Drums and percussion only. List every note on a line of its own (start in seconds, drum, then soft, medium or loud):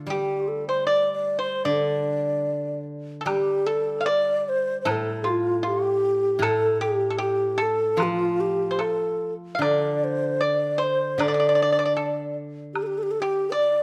3.27 high woodblock medium
4.87 high woodblock medium
6.42 high woodblock medium
8.00 high woodblock soft
8.80 high woodblock soft
8.80 low woodblock soft
9.62 high woodblock medium
11.20 high woodblock medium
12.75 high woodblock medium